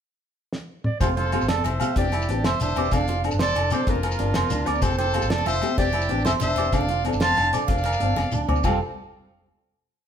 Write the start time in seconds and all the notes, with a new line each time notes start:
0.53 snare
0.84 D5, mid tom
1.00 F1 F3 A3 C4 F4 G4 A4 C5, kick, closed hi-hat, muted conga, low agogo, shekere
1.09 high conga
1.16 F4 A4 C5, closed hi-hat, low conga
1.32 F3 A3 C4 F4 G4, closed hi-hat, high conga, low agogo
1.41 A1, shekere
1.48 F1 A4 D5, snare, closed hi-hat, muted conga, low conga
1.58 high conga
1.64 F1 C5 E5, closed hi-hat, low conga, low agogo, shekere
1.74 low conga
1.79 F3 A3 C4 G4 F5, closed hi-hat, high conga, low agogo, shekere
1.96 F1 E3 C4 D4 G4 D5, kick, closed hi-hat, muted conga, shekere
2.04 high conga
2.12 E4, closed hi-hat, low conga, low agogo
2.22 shekere
2.28 A1 E3 C4 D4 G4, closed hi-hat, high conga, shekere
2.44 F1 C5 E5, snare, closed hi-hat, muted conga, low agogo
2.53 low conga
2.60 E1 D4 C5 E5, closed hi-hat, low conga, shekere
2.68 low conga, shekere
2.76 E1 E3 C4 D4 G4 D5, closed hi-hat, high conga, low agogo
2.85 shekere
2.91 F1 F3 C4 D4 A4 D5 F5, kick, closed hi-hat, muted conga, low agogo, shekere
3.01 high conga
3.08 F4, closed hi-hat, low conga
3.23 F3 C4 D4 A4, closed hi-hat, low agogo
3.31 G1, shekere
3.39 F1 A4 C5 D5, snare, closed hi-hat, muted conga, low conga
3.55 F1 D4, closed hi-hat, low conga, low agogo, shekere
3.64 low conga
3.70 F3 C4 D4 A4 C5 D5, closed hi-hat, high conga, low agogo, shekere
3.87 F1 F3 C4 D4 F4 A#4, kick, closed hi-hat, muted conga, shekere
3.96 high conga
4.03 A#4, closed hi-hat, low conga, low agogo
4.12 shekere
4.19 G1 F3 C4 D4 A#4, closed hi-hat, high conga, shekere
4.34 F1 C5, snare, closed hi-hat, muted conga, low agogo
4.43 high conga, low conga
4.50 D2 D4, closed hi-hat, low conga, shekere
4.59 low conga
4.65 D2 F3 C4 D4 A#4 D5, closed hi-hat, high conga, low agogo
4.75 shekere
4.80 F1 F3 A3 C4 G4 C5, muted clean electric guitar stroke, kick, closed hi-hat, muted conga, low agogo, shekere
4.85 A4
4.91 high conga
4.97 G4 A4 C5, closed hi-hat, low conga
5.14 A3 F4 G4, closed hi-hat, high conga, low agogo
5.22 A1, shekere
5.30 F1 A4 D5, snare, closed hi-hat, muted conga, low conga
5.38 high conga
5.46 F1 F4 C5 E5, closed hi-hat, low conga, low agogo, shekere
5.56 low conga
5.61 F3 A3 C4 G4, closed hi-hat, high conga, low agogo
5.77 F1 E3 C4 D4 G4 D5, kick, closed hi-hat, muted conga, shekere
5.85 high conga
5.93 E4, closed hi-hat, low conga, low agogo
6.02 shekere
6.09 A1 E3 C4 D4 G4, closed hi-hat, high conga, shekere
6.25 F1 C5 E5, snare, closed hi-hat, muted conga, low agogo
6.33 high conga, low conga
6.40 E1 D4 C5 E5, closed hi-hat, low conga, shekere
6.48 low conga, shekere
6.56 E1 E3 C4 D4 G4 D5, closed hi-hat, high conga, low agogo
6.65 shekere
6.72 F1 F3 C4 D4 A4 D5 F5, kick, closed hi-hat, muted conga, low conga, low agogo, shekere
6.81 high conga
6.89 F4, closed hi-hat, low conga
7.05 F3 C4 D4 A4, closed hi-hat, high conga, low agogo
7.13 G1, shekere
7.20 F1 C5 F5 A5, snare, closed hi-hat, muted conga, low conga, shekere
7.29 high conga
7.36 F1 D4, closed hi-hat, low conga, low agogo, shekere
7.45 low conga
7.52 F3 C4 D4 A4 D5, closed hi-hat, low agogo, shekere
7.62 shekere
7.67 F1 F3 D4 A#4 D5 F5, muted nylon-string guitar stroke, kick, closed hi-hat, muted conga
7.76 low conga, shekere
7.84 A#4, closed hi-hat, low conga, low agogo
7.93 shekere
8.00 G1 F3 C4 D4, closed hi-hat, high conga, shekere
8.04 D4 A#4
8.16 F1, snare, muted conga, low agogo
8.24 high conga
8.32 D2 D4, mid tom, low conga, shekere
8.48 D2 F3 C4 D4 A#4 D5, floor tom, high conga, low agogo
8.56 shekere
8.64 F1 G3 C4 F4 G4 A4 F5, kick, crash, muted conga, low agogo, shekere